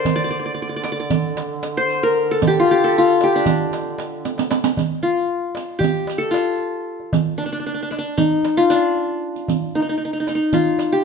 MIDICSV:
0, 0, Header, 1, 5, 480
1, 0, Start_track
1, 0, Tempo, 523560
1, 50, Time_signature, 9, 3, 24, 8
1, 10121, End_track
2, 0, Start_track
2, 0, Title_t, "Qanun"
2, 0, Program_c, 0, 107
2, 0, Note_on_c, 0, 70, 85
2, 0, Note_on_c, 0, 72, 83
2, 0, Note_on_c, 0, 74, 92
2, 140, Note_off_c, 0, 74, 0
2, 144, Note_on_c, 0, 74, 91
2, 218, Note_off_c, 0, 74, 0
2, 222, Note_on_c, 0, 74, 63
2, 276, Note_off_c, 0, 74, 0
2, 280, Note_on_c, 0, 74, 63
2, 358, Note_off_c, 0, 74, 0
2, 362, Note_on_c, 0, 74, 54
2, 383, Note_off_c, 0, 70, 0
2, 414, Note_off_c, 0, 74, 0
2, 418, Note_on_c, 0, 74, 61
2, 496, Note_off_c, 0, 74, 0
2, 499, Note_on_c, 0, 74, 51
2, 566, Note_off_c, 0, 74, 0
2, 570, Note_on_c, 0, 74, 60
2, 631, Note_off_c, 0, 74, 0
2, 635, Note_on_c, 0, 74, 55
2, 696, Note_off_c, 0, 74, 0
2, 700, Note_on_c, 0, 74, 63
2, 766, Note_off_c, 0, 74, 0
2, 769, Note_on_c, 0, 74, 57
2, 839, Note_off_c, 0, 74, 0
2, 843, Note_on_c, 0, 74, 71
2, 873, Note_off_c, 0, 72, 0
2, 911, Note_off_c, 0, 74, 0
2, 915, Note_on_c, 0, 74, 60
2, 1626, Note_on_c, 0, 72, 96
2, 1817, Note_off_c, 0, 74, 0
2, 1863, Note_on_c, 0, 70, 90
2, 2121, Note_on_c, 0, 69, 87
2, 2176, Note_off_c, 0, 70, 0
2, 2268, Note_on_c, 0, 67, 85
2, 2380, Note_on_c, 0, 65, 84
2, 2482, Note_off_c, 0, 67, 0
2, 2486, Note_on_c, 0, 67, 88
2, 2595, Note_off_c, 0, 72, 0
2, 2602, Note_off_c, 0, 69, 0
2, 2605, Note_on_c, 0, 69, 86
2, 2730, Note_off_c, 0, 65, 0
2, 2734, Note_on_c, 0, 65, 87
2, 2962, Note_off_c, 0, 67, 0
2, 2966, Note_on_c, 0, 67, 90
2, 3077, Note_on_c, 0, 62, 73
2, 3678, Note_off_c, 0, 69, 0
2, 3970, Note_off_c, 0, 65, 0
2, 4118, Note_off_c, 0, 67, 0
2, 4446, Note_off_c, 0, 62, 0
2, 4609, Note_on_c, 0, 65, 65
2, 5306, Note_on_c, 0, 67, 77
2, 5667, Note_on_c, 0, 69, 85
2, 5780, Note_off_c, 0, 65, 0
2, 5784, Note_on_c, 0, 65, 72
2, 6458, Note_off_c, 0, 67, 0
2, 6740, Note_off_c, 0, 69, 0
2, 6764, Note_on_c, 0, 62, 68
2, 6834, Note_off_c, 0, 62, 0
2, 6838, Note_on_c, 0, 62, 49
2, 6895, Note_off_c, 0, 62, 0
2, 6898, Note_on_c, 0, 62, 54
2, 6961, Note_off_c, 0, 62, 0
2, 6965, Note_on_c, 0, 62, 42
2, 7020, Note_off_c, 0, 65, 0
2, 7023, Note_off_c, 0, 62, 0
2, 7027, Note_on_c, 0, 62, 51
2, 7095, Note_off_c, 0, 62, 0
2, 7099, Note_on_c, 0, 62, 44
2, 7171, Note_off_c, 0, 62, 0
2, 7175, Note_on_c, 0, 62, 52
2, 7246, Note_off_c, 0, 62, 0
2, 7250, Note_on_c, 0, 62, 48
2, 7317, Note_off_c, 0, 62, 0
2, 7320, Note_on_c, 0, 62, 60
2, 7495, Note_on_c, 0, 63, 81
2, 7550, Note_off_c, 0, 62, 0
2, 7859, Note_on_c, 0, 65, 87
2, 7975, Note_on_c, 0, 62, 75
2, 8030, Note_off_c, 0, 63, 0
2, 8941, Note_on_c, 0, 63, 71
2, 8996, Note_off_c, 0, 62, 0
2, 9001, Note_off_c, 0, 63, 0
2, 9005, Note_on_c, 0, 63, 48
2, 9066, Note_off_c, 0, 63, 0
2, 9069, Note_on_c, 0, 63, 55
2, 9095, Note_off_c, 0, 65, 0
2, 9142, Note_off_c, 0, 63, 0
2, 9145, Note_on_c, 0, 63, 41
2, 9209, Note_off_c, 0, 63, 0
2, 9213, Note_on_c, 0, 63, 49
2, 9285, Note_off_c, 0, 63, 0
2, 9288, Note_on_c, 0, 63, 43
2, 9348, Note_off_c, 0, 63, 0
2, 9351, Note_on_c, 0, 63, 51
2, 9429, Note_off_c, 0, 63, 0
2, 9433, Note_on_c, 0, 63, 48
2, 9486, Note_off_c, 0, 63, 0
2, 9489, Note_on_c, 0, 63, 59
2, 9659, Note_on_c, 0, 65, 71
2, 10015, Note_on_c, 0, 67, 78
2, 10121, Note_off_c, 0, 63, 0
2, 10121, Note_off_c, 0, 65, 0
2, 10121, Note_off_c, 0, 67, 0
2, 10121, End_track
3, 0, Start_track
3, 0, Title_t, "Duduk"
3, 0, Program_c, 1, 69
3, 61, Note_on_c, 1, 50, 68
3, 4425, Note_off_c, 1, 50, 0
3, 10121, End_track
4, 0, Start_track
4, 0, Title_t, "Darbuka"
4, 47, Note_on_c, 9, 64, 81
4, 139, Note_off_c, 9, 64, 0
4, 291, Note_on_c, 9, 62, 25
4, 383, Note_off_c, 9, 62, 0
4, 535, Note_on_c, 9, 62, 27
4, 627, Note_off_c, 9, 62, 0
4, 776, Note_on_c, 9, 63, 65
4, 868, Note_off_c, 9, 63, 0
4, 1013, Note_on_c, 9, 64, 90
4, 1104, Note_off_c, 9, 64, 0
4, 1258, Note_on_c, 9, 63, 70
4, 1350, Note_off_c, 9, 63, 0
4, 1493, Note_on_c, 9, 63, 68
4, 1585, Note_off_c, 9, 63, 0
4, 1747, Note_on_c, 9, 62, 26
4, 1839, Note_off_c, 9, 62, 0
4, 1988, Note_on_c, 9, 62, 25
4, 2080, Note_off_c, 9, 62, 0
4, 2225, Note_on_c, 9, 64, 98
4, 2317, Note_off_c, 9, 64, 0
4, 2467, Note_on_c, 9, 62, 28
4, 2559, Note_off_c, 9, 62, 0
4, 2703, Note_on_c, 9, 62, 27
4, 2795, Note_off_c, 9, 62, 0
4, 2941, Note_on_c, 9, 63, 64
4, 3033, Note_off_c, 9, 63, 0
4, 3171, Note_on_c, 9, 64, 93
4, 3263, Note_off_c, 9, 64, 0
4, 3422, Note_on_c, 9, 63, 67
4, 3513, Note_off_c, 9, 63, 0
4, 3654, Note_on_c, 9, 63, 66
4, 3745, Note_off_c, 9, 63, 0
4, 3898, Note_on_c, 9, 63, 59
4, 3990, Note_off_c, 9, 63, 0
4, 4014, Note_on_c, 9, 62, 63
4, 4106, Note_off_c, 9, 62, 0
4, 4131, Note_on_c, 9, 63, 77
4, 4223, Note_off_c, 9, 63, 0
4, 4254, Note_on_c, 9, 62, 88
4, 4346, Note_off_c, 9, 62, 0
4, 4376, Note_on_c, 9, 64, 79
4, 4468, Note_off_c, 9, 64, 0
4, 4609, Note_on_c, 9, 62, 20
4, 4701, Note_off_c, 9, 62, 0
4, 4849, Note_on_c, 9, 62, 23
4, 4941, Note_off_c, 9, 62, 0
4, 5087, Note_on_c, 9, 63, 61
4, 5179, Note_off_c, 9, 63, 0
4, 5323, Note_on_c, 9, 64, 82
4, 5415, Note_off_c, 9, 64, 0
4, 5568, Note_on_c, 9, 63, 60
4, 5660, Note_off_c, 9, 63, 0
4, 5812, Note_on_c, 9, 63, 64
4, 5903, Note_off_c, 9, 63, 0
4, 6048, Note_on_c, 9, 62, 24
4, 6140, Note_off_c, 9, 62, 0
4, 6415, Note_on_c, 9, 62, 27
4, 6507, Note_off_c, 9, 62, 0
4, 6534, Note_on_c, 9, 64, 94
4, 6626, Note_off_c, 9, 64, 0
4, 6770, Note_on_c, 9, 62, 25
4, 6861, Note_off_c, 9, 62, 0
4, 7019, Note_on_c, 9, 62, 27
4, 7111, Note_off_c, 9, 62, 0
4, 7262, Note_on_c, 9, 63, 58
4, 7353, Note_off_c, 9, 63, 0
4, 7499, Note_on_c, 9, 64, 78
4, 7591, Note_off_c, 9, 64, 0
4, 7747, Note_on_c, 9, 63, 61
4, 7838, Note_off_c, 9, 63, 0
4, 7985, Note_on_c, 9, 63, 60
4, 8076, Note_off_c, 9, 63, 0
4, 8220, Note_on_c, 9, 62, 26
4, 8312, Note_off_c, 9, 62, 0
4, 8578, Note_on_c, 9, 62, 25
4, 8670, Note_off_c, 9, 62, 0
4, 8695, Note_on_c, 9, 64, 74
4, 8787, Note_off_c, 9, 64, 0
4, 8936, Note_on_c, 9, 62, 23
4, 9028, Note_off_c, 9, 62, 0
4, 9175, Note_on_c, 9, 62, 25
4, 9267, Note_off_c, 9, 62, 0
4, 9417, Note_on_c, 9, 63, 53
4, 9509, Note_off_c, 9, 63, 0
4, 9652, Note_on_c, 9, 64, 77
4, 9743, Note_off_c, 9, 64, 0
4, 9890, Note_on_c, 9, 63, 62
4, 9982, Note_off_c, 9, 63, 0
4, 10121, End_track
5, 0, Start_track
5, 0, Title_t, "Riq"
5, 53, Note_on_c, 9, 54, 59
5, 145, Note_off_c, 9, 54, 0
5, 286, Note_on_c, 9, 54, 20
5, 378, Note_off_c, 9, 54, 0
5, 766, Note_on_c, 9, 54, 52
5, 857, Note_off_c, 9, 54, 0
5, 1013, Note_on_c, 9, 54, 61
5, 1104, Note_off_c, 9, 54, 0
5, 1255, Note_on_c, 9, 54, 45
5, 1347, Note_off_c, 9, 54, 0
5, 1495, Note_on_c, 9, 54, 46
5, 1586, Note_off_c, 9, 54, 0
5, 1738, Note_on_c, 9, 54, 18
5, 1830, Note_off_c, 9, 54, 0
5, 2218, Note_on_c, 9, 54, 63
5, 2309, Note_off_c, 9, 54, 0
5, 2461, Note_on_c, 9, 54, 18
5, 2552, Note_off_c, 9, 54, 0
5, 2707, Note_on_c, 9, 54, 18
5, 2799, Note_off_c, 9, 54, 0
5, 2939, Note_on_c, 9, 54, 44
5, 3031, Note_off_c, 9, 54, 0
5, 3176, Note_on_c, 9, 54, 60
5, 3267, Note_off_c, 9, 54, 0
5, 3420, Note_on_c, 9, 54, 43
5, 3511, Note_off_c, 9, 54, 0
5, 3664, Note_on_c, 9, 54, 46
5, 3755, Note_off_c, 9, 54, 0
5, 3900, Note_on_c, 9, 54, 54
5, 3991, Note_off_c, 9, 54, 0
5, 4026, Note_on_c, 9, 54, 69
5, 4118, Note_off_c, 9, 54, 0
5, 4138, Note_on_c, 9, 54, 76
5, 4229, Note_off_c, 9, 54, 0
5, 4253, Note_on_c, 9, 54, 90
5, 4345, Note_off_c, 9, 54, 0
5, 4388, Note_on_c, 9, 54, 53
5, 4480, Note_off_c, 9, 54, 0
5, 5106, Note_on_c, 9, 54, 46
5, 5198, Note_off_c, 9, 54, 0
5, 5354, Note_on_c, 9, 54, 52
5, 5446, Note_off_c, 9, 54, 0
5, 5589, Note_on_c, 9, 54, 41
5, 5681, Note_off_c, 9, 54, 0
5, 5832, Note_on_c, 9, 54, 44
5, 5923, Note_off_c, 9, 54, 0
5, 6544, Note_on_c, 9, 54, 55
5, 6636, Note_off_c, 9, 54, 0
5, 7503, Note_on_c, 9, 54, 52
5, 7594, Note_off_c, 9, 54, 0
5, 7742, Note_on_c, 9, 54, 43
5, 7834, Note_off_c, 9, 54, 0
5, 7984, Note_on_c, 9, 54, 45
5, 8075, Note_off_c, 9, 54, 0
5, 8583, Note_on_c, 9, 54, 18
5, 8674, Note_off_c, 9, 54, 0
5, 8704, Note_on_c, 9, 54, 54
5, 8796, Note_off_c, 9, 54, 0
5, 9424, Note_on_c, 9, 54, 42
5, 9515, Note_off_c, 9, 54, 0
5, 9651, Note_on_c, 9, 54, 55
5, 9743, Note_off_c, 9, 54, 0
5, 9896, Note_on_c, 9, 54, 41
5, 9987, Note_off_c, 9, 54, 0
5, 10121, End_track
0, 0, End_of_file